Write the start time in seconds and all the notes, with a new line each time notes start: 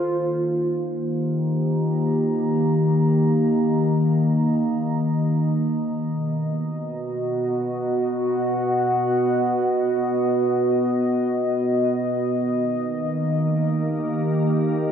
Already playing: D#3 F4 C5
0.01 A#3
0.82 G4
0.98 A#5
1.04 D#5
6.09 B2
6.36 B3
6.76 F#4
7.75 F#5
12.36 D#3 A#3
12.84 A#3
13.57 G4
14.34 A#5